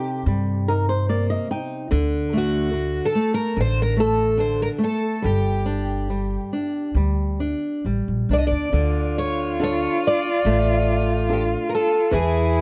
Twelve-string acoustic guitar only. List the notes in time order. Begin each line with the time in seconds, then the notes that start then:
Already playing: G4
2.37 F#4
3.05 A4
3.34 A#4
3.61 C5
3.82 A#4
4.00 A4
4.40 C5
4.62 A#4
4.84 A4
5.25 G4
8.33 D5
8.38 D#5
8.47 D5
9.18 C#5
9.63 C#5
10.07 D5
11.33 G4
11.69 A#4
11.75 A4
12.14 G#4